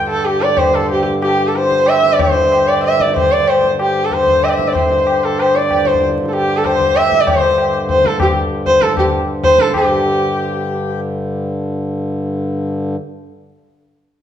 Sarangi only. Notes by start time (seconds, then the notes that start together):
0.10 A4
0.25 G4
0.42 D5
0.58 C5
0.75 A4
0.91 G4
1.22 G4
1.47 A4
1.56 C5
1.88 E5
2.12 D5
2.20 C5
2.68 D5
2.84 E5
3.01 D5
3.17 C5
3.32 D5
3.49 C5
3.81 G4
4.05 A4
4.13 C5
4.44 E5
4.49 D5
4.54 E5
4.68 D5
4.75 C5
5.24 A4
5.40 C5
5.56 D5
5.86 C5
6.28 A4
6.33 G4
6.57 A4
6.65 C5
6.96 E5
7.20 D5
7.28 C5
7.90 C5
8.06 A4
8.21 G4
8.66 C5
8.82 A4
8.99 G4
9.44 C5
9.61 A4
9.76 G4